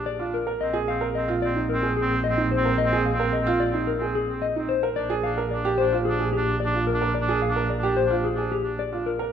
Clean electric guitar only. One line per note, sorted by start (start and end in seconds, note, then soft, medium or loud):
0.06 0.24 D5 medium
0.34 0.51 A#4 medium
0.61 0.78 D#5 medium
0.88 1.06 F5 medium
1.15 1.33 D#5 medium
1.42 1.60 D5 medium
1.69 1.87 A#4 medium
1.97 2.15 G#4 medium
2.24 2.42 D#5 medium
2.51 2.69 C5 medium
2.78 2.96 D#5 loud
3.06 3.24 F5 medium
3.33 3.51 D#5 medium
3.60 3.78 D5 medium
3.87 4.05 A#4 medium
4.15 4.33 G#4 medium
4.42 4.60 D#5 medium
4.69 4.87 C5 medium
4.96 5.14 D5 loud
5.23 5.42 F5 medium
5.51 5.69 D5 medium
5.78 5.96 C5 loud
6.05 6.23 G#4 medium
6.33 6.51 G4 medium
6.60 6.78 D5 medium
6.87 7.05 A#4 medium
7.15 7.33 D5 medium
7.42 7.60 F5 medium
7.70 7.87 D5 medium
7.97 8.14 C5 medium
8.24 8.42 G#4 medium
8.52 8.69 G4 medium
8.79 8.96 D5 medium
9.06 9.24 A#4 medium